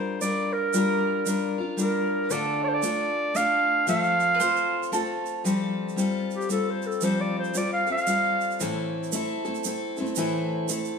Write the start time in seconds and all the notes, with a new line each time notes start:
Already playing: G3 D4 F4 A#4 C5
0.21 G3 D4 F4 A#4 D5, shaker
0.53 A#4
0.73 G3 D4 F4 A#4, shaker
1.26 G3 D4 F4 A#4, shaker
1.58 D4 F4 A#4
1.77 G3 D4 F4 A#4, shaker
2.30 D3 A3 D4 F4 A4 D5, shaker
2.64 D5
2.68 C5
2.74 D5
2.82 A3 D4 F4 A4, shaker
3.34 A3 D4 F4 A4 F5, shaker
3.87 F3 A3 C4 F4 A4 F5, shaker
4.04 shaker
4.20 shaker
4.35 B4
4.40 A3 C4 F4 A4 C5, shaker
4.56 shaker
4.83 shaker
4.92 A3 C4 F4 A4, shaker
5.26 shaker
5.44 F3 G3 C4 F4 A4, shaker
5.89 shaker
5.96 G3 C4 F4 A4, shaker
6.31 G4, shaker
6.41 shaker
6.49 G3 C4 F4 A4, shaker
6.70 C5
6.82 shaker
6.87 A4
6.92 shaker
7.01 F3 G3 C4 F4 A4 C5, shaker
7.21 D5
7.39 C5
7.44 shaker
7.54 G3 C4 F4 A4, shaker
7.58 D5
7.74 F5
7.87 C4 F4 A4, shaker
7.92 F5
7.98 shaker
8.07 G3 C4 F4 A4, shaker
8.41 shaker
8.51 shaker
8.60 A2 E3 A3 C4 E4 A4, shaker
9.03 shaker
9.12 A3 C4 E4 A4, shaker
9.45 A3 C4 E4 A4, shaker
9.55 shaker
9.64 A3 C4 E4 A4, shaker
9.97 C4 E4 A4, shaker
10.01 A3
10.06 shaker
10.16 A2 E3 A3 C4 E4 A4, shaker
10.69 A3 C4 E4 A4, shaker
10.85 shaker